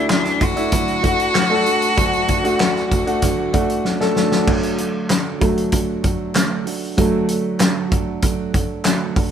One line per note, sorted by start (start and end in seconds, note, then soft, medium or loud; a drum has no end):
0.00 1.93 D2 medium
0.00 1.93 D3 medium
0.00 0.56 A3 medium
0.00 0.11 D4 loud
0.00 0.56 D4 medium
0.00 0.51 E4 medium
0.00 1.03 F#4 medium
0.09 0.41 F#3 medium
0.09 0.41 A3 medium
0.09 0.40 D4 medium
0.09 0.44 D4 medium
0.09 0.39 F#4 medium
0.09 snare loud
0.09 clap medium
0.25 snare soft
0.25 closed hi-hat soft
0.40 0.71 A3 soft
0.40 0.72 D4 soft
0.40 0.72 F#4 medium
0.40 3.86 F#4 loud
0.40 kick medium
0.40 closed hi-hat medium
0.56 0.99 A3 medium
0.56 0.99 D4 medium
0.56 0.99 E4 medium
0.56 closed hi-hat soft
0.72 1.03 D3 medium
0.72 1.03 F#3 medium
0.72 1.04 A3 medium
0.72 1.03 D4 medium
0.72 1.01 F#4 medium
0.72 kick medium
0.72 closed hi-hat medium
0.88 closed hi-hat soft
1.02 1.46 A3 medium
1.02 1.34 A3 soft
1.02 1.46 D4 medium
1.02 1.35 D4 soft
1.02 1.34 F#4 medium
1.02 1.46 F#4 medium
1.02 kick medium
1.02 closed hi-hat medium
1.20 closed hi-hat soft
1.34 1.66 F#3 medium
1.34 1.66 A3 medium
1.34 1.65 D4 medium
1.34 snare loud
1.34 clap medium
1.50 1.93 A3 medium
1.50 1.93 D4 medium
1.50 1.93 A4 medium
1.65 1.96 A3 soft
1.65 1.97 D4 medium
1.65 1.97 F#4 medium
1.65 closed hi-hat medium
1.82 closed hi-hat soft
1.96 4.43 D2 medium
1.96 2.28 D3 medium
1.96 4.43 D3 medium
1.96 2.29 F#3 medium
1.96 2.40 A3 medium
1.96 2.29 A3 medium
1.96 2.40 D4 medium
1.96 2.28 D4 medium
1.96 2.40 F#4 medium
1.96 2.26 F#4 medium
1.96 kick loud
1.96 closed hi-hat medium
2.13 closed hi-hat soft
2.28 2.59 A3 soft
2.28 2.60 D4 medium
2.28 2.60 F#4 medium
2.28 kick medium
2.28 closed hi-hat medium
2.44 3.01 A3 medium
2.44 3.01 D4 medium
2.44 3.01 F#4 medium
2.44 closed hi-hat soft
2.59 2.91 F#3 medium
2.59 2.91 A3 medium
2.59 snare loud
2.59 clap medium
2.76 snare soft
2.90 3.22 A3 soft
2.90 3.22 D4 soft
2.90 3.22 F#4 medium
2.90 kick medium
2.90 closed hi-hat medium
3.06 3.49 A3 medium
3.06 3.49 D4 medium
3.06 3.50 F#4 medium
3.06 closed hi-hat soft
3.22 3.53 D3 medium
3.22 3.54 F#3 medium
3.22 3.54 A3 medium
3.22 3.53 D4 medium
3.22 3.52 F#4 medium
3.22 kick medium
3.22 closed hi-hat loud
3.53 3.96 A3 medium
3.53 3.84 A3 soft
3.53 3.96 D4 medium
3.53 3.85 D4 soft
3.53 3.85 F#4 medium
3.53 3.96 F#4 medium
3.53 kick medium
3.53 closed hi-hat medium
3.70 closed hi-hat soft
3.84 4.16 F#3 medium
3.84 4.16 A3 medium
3.84 4.16 D4 medium
3.84 4.14 F#4 medium
3.84 snare soft
4.00 4.43 A3 medium
4.00 4.43 D4 medium
4.00 4.44 A4 medium
4.00 snare medium
4.15 4.47 A3 soft
4.15 4.47 D4 medium
4.15 4.47 F#4 medium
4.15 snare medium
4.32 snare medium
4.47 5.39 D3 soft
4.47 4.79 D3 medium
4.47 5.40 F#3 soft
4.47 4.79 F#3 medium
4.47 4.79 A3 medium
4.47 5.40 A3 medium
4.47 4.78 D4 medium
4.47 4.76 F#4 medium
4.47 kick loud
4.47 crash medium
4.63 closed hi-hat soft
4.78 5.09 A3 soft
4.78 5.09 D4 soft
4.78 5.10 F#4 medium
4.78 closed hi-hat medium
5.09 5.41 D3 medium
5.09 5.41 F#3 medium
5.09 5.41 A3 medium
5.09 5.41 D4 medium
5.09 5.39 F#4 medium
5.09 snare loud
5.09 clap medium
5.09 closed hi-hat medium
5.40 5.69 D3 soft
5.40 5.69 F#3 soft
5.40 5.69 A3 soft
5.40 5.71 A3 soft
5.40 5.72 D4 medium
5.40 5.72 F#4 medium
5.40 kick medium
5.40 closed hi-hat medium
5.58 closed hi-hat soft
5.72 6.03 F#3 medium
5.72 6.04 A3 medium
5.72 6.03 D4 medium
5.72 6.02 F#4 medium
5.72 kick medium
5.72 closed hi-hat loud
6.03 6.34 A3 soft
6.03 6.34 D4 soft
6.03 6.35 F#4 soft
6.03 kick medium
6.03 closed hi-hat medium
6.34 6.66 D3 medium
6.34 6.66 F#3 medium
6.34 6.66 A3 medium
6.34 6.66 D4 medium
6.34 6.64 F#4 medium
6.34 snare loud
6.34 clap medium
6.34 closed hi-hat medium
6.65 6.97 A3 medium
6.65 6.97 D4 medium
6.65 6.97 F#4 medium
6.65 open hi-hat medium
6.97 9.31 D3 soft
6.97 7.29 D3 medium
6.97 9.31 F#3 soft
6.97 7.29 F#3 medium
6.97 9.31 A3 medium
6.97 7.29 A3 medium
6.97 7.29 D4 medium
6.97 7.27 F#4 medium
6.97 kick loud
6.97 closed hi-hat medium
7.28 7.59 A3 medium
7.28 7.60 D4 medium
7.28 7.60 F#4 medium
7.28 closed hi-hat medium
7.59 7.91 D3 medium
7.59 7.91 F#3 medium
7.59 7.91 A3 medium
7.59 7.91 D4 medium
7.59 7.89 F#4 medium
7.59 snare loud
7.59 clap medium
7.59 closed hi-hat medium
7.90 8.22 A3 medium
7.90 8.22 D4 medium
7.90 8.22 F#4 medium
7.90 kick medium
7.90 closed hi-hat medium
8.22 8.54 F#3 medium
8.22 8.54 A3 medium
8.22 8.53 D4 medium
8.22 8.52 F#4 medium
8.22 kick medium
8.22 closed hi-hat loud
8.53 8.85 A3 soft
8.53 8.85 D4 soft
8.53 8.85 F#4 soft
8.53 kick medium
8.53 closed hi-hat medium
8.85 9.16 D3 medium
8.85 9.17 F#3 medium
8.85 9.17 A3 medium
8.85 9.16 D4 medium
8.85 9.15 F#4 medium
8.85 snare loud
8.85 clap medium
8.85 closed hi-hat medium
9.16 9.31 A3 soft
9.16 9.31 D4 soft
9.16 9.31 F#4 medium
9.16 kick medium
9.16 open hi-hat medium